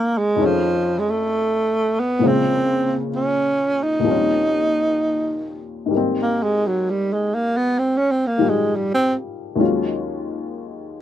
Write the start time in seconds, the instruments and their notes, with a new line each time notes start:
Already playing: upright piano G#2 D#3 A#3 C4 G4, tenor saxophone A#3
0.18 tenor saxophone G#3
0.36 upright piano F2 D#3 G#4
0.40 upright piano A3 C#4
0.45 tenor saxophone F3
0.99 tenor saxophone G#3
1.10 tenor saxophone A3
2.00 tenor saxophone B3
2.19 upright piano A#2 F3 G#3
2.24 upright piano C#3 C5, tenor saxophone C4
3.15 tenor saxophone C#4
3.83 tenor saxophone D#4
4.00 upright piano D#2 A#2
4.05 upright piano F3 G3 C4
4.11 upright piano C#4
5.86 upright piano G#2 D#3
5.91 upright piano G3
5.95 upright piano A#3 C4
6.22 tenor saxophone A#3
6.43 tenor saxophone G#3
6.67 tenor saxophone F#3
6.90 tenor saxophone G3
7.13 tenor saxophone G#3
7.35 tenor saxophone A#3
7.57 tenor saxophone B3
7.79 tenor saxophone C4
7.97 tenor saxophone C#4
8.11 tenor saxophone C4
8.27 tenor saxophone A#3
8.38 upright piano D#3 F3 G3
8.50 tenor saxophone G#3
8.76 tenor saxophone G3
8.94 tenor saxophone C4
9.56 upright piano D#2 D#3 F#3 G#3 C#4
9.61 upright piano F4